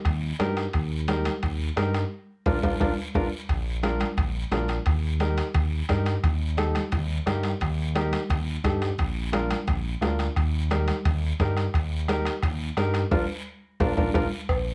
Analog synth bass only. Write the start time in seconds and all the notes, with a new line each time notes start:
0.05 D#2
0.40 G2
0.74 D#2
1.43 D#2
1.77 G2
2.46 A#1
2.63 A#1
2.81 A#1
3.15 A#1
3.49 A#1
4.18 A#1
4.52 A#1
4.87 D#2
5.55 D#2
5.89 G2
6.24 D#2
6.93 D#2
7.27 G2
7.61 D#2
8.30 D#2
8.64 G2
8.99 A#1
9.68 A#1
10.01 D2
10.36 D#2
11.05 D#2
11.40 G2
11.74 D#2
12.43 D#2
12.77 G2
13.12 A#1
13.80 A#1
13.98 A#1
14.15 A#1
14.49 A#1